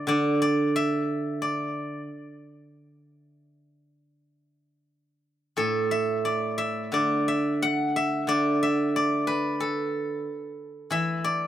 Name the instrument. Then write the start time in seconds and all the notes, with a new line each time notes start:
guzheng
Already playing: E5
0.07 D3 D5
0.42 D5
0.76 E5
1.42 D5
5.57 A2 A4
5.91 E5
6.25 D5
6.58 E5
6.92 D3 D5
7.28 E5
7.62 F#5
7.96 E5
8.27 D3 D5
8.63 E5
8.96 D5
9.27 B4
9.60 A4
10.90 E3 E5
11.24 D5